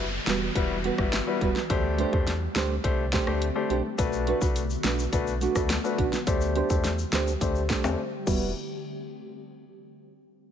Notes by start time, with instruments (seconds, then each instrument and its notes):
Already playing: sub bass F#1, ambient pad E3 G3 B3 F#4, downlifter
0.26 sub bass E1, nylon-string guitar G3 B3 F#4 B4, finger snap, snare, closed hi-hat
0.55 sub bass E1, grand piano G3 E4 F#4 B4, kick, closed hi-hat
0.84 nylon-string guitar G3 B3 F#4 B4, closed hi-hat
0.98 sub bass G1, grand piano G3 E4 F#4 B4, kick, cross-stick
1.12 finger snap, snare, closed hi-hat
1.27 grand piano G3 E4 F#4 B4
1.41 sub bass E1, nylon-string guitar G3 B3 F#4 B4, kick, closed hi-hat
1.56 snare
1.70 sub bass D2, ambient pad D3 A3 C4 G4, grand piano A3 D4 G4 C5, kick, closed hi-hat
1.98 nylon-string guitar A3 D4 G4 C5, closed hi-hat
2.12 sub bass E2, grand piano A3 D4 G4 C5, kick
2.27 snare, closed hi-hat
2.55 sub bass D2, nylon-string guitar A3 D4 G4 C5, finger snap, snare, closed hi-hat
2.84 sub bass C2, grand piano A3 D4 G4 C5, kick, closed hi-hat
3.12 nylon-string guitar A3 D4 G4 C5, finger snap, kick, snare, closed hi-hat
3.27 sub bass D2, grand piano A3 D4 G4 C5, cross-stick
3.42 closed hi-hat
3.55 grand piano A3 D4 G4 C5
3.69 sub bass B1, nylon-string guitar A3 D4 G4 C5, closed hi-hat
3.84 muted nylon-string guitar stroke
3.98 sub bass B1, ambient pad F#3 B3 F#4, grand piano A3 D4 F#4 B4, kick, closed hi-hat, shaker
4.13 shaker
4.27 nylon-string guitar A3 D4 F#4 B4, closed hi-hat
4.41 sub bass C2, grand piano A3 D4 F#4 B4, kick, shaker
4.56 closed hi-hat, shaker
4.70 shaker
4.83 sub bass B1, nylon-string guitar A3 D4 F#4 B4, finger snap, snare, closed hi-hat, shaker
4.99 shaker
5.12 sub bass B1, grand piano A3 D4 F#4 B4, kick, closed hi-hat, shaker
5.27 shaker
5.41 nylon-string guitar A3 D4 F#4 B4, closed hi-hat, shaker
5.55 sub bass D2, grand piano A3 D4 F#4 B4, kick, cross-stick, shaker
5.69 finger snap, snare, closed hi-hat, shaker
5.84 grand piano A3 D4 F#4 B4, shaker
5.98 sub bass B1, nylon-string guitar A3 D4 F#4 B4, kick, closed hi-hat
6.13 snare, shaker
6.27 sub bass D2, ambient pad D3 G3 C4 G4, grand piano A3 D4 G4 C5, kick, closed hi-hat, shaker
6.41 shaker
6.55 nylon-string guitar A3 D4 G4 C5, closed hi-hat
6.70 sub bass E2, grand piano A3 D4 G4 C5, kick, shaker
6.84 snare, closed hi-hat, shaker
6.99 shaker
7.12 sub bass D2, nylon-string guitar A3 D4 G4 C5, finger snap, snare, closed hi-hat, shaker
7.27 shaker
7.41 sub bass D2, grand piano A3 D4 G4 C5, kick, closed hi-hat, shaker
7.55 shaker
7.69 nylon-string guitar A3 D4 G4 C5, finger snap, kick, snare, closed hi-hat, shaker
7.84 sub bass E2, grand piano A3 D4 G4 C5, cross-stick, high timbale, shaker
8.26 sub bass E1, grand piano G3 E4 F#4 B4, nylon-string guitar G3 B3 F#4 B4, kick, crash, shaker